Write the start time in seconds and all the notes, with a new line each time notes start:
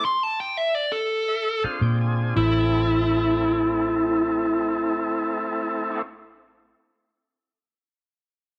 Already playing: A4
0.05 C6
0.23 A5
0.40 G5
0.57 E5
0.75 D5
0.92 A4
1.28 E5
1.64 C4 D4 F4 G#4 F5, muted fingered electric bass stroke
1.81 A#2 G5
2.01 G#5
2.36 A1 A3 C4 E4 A4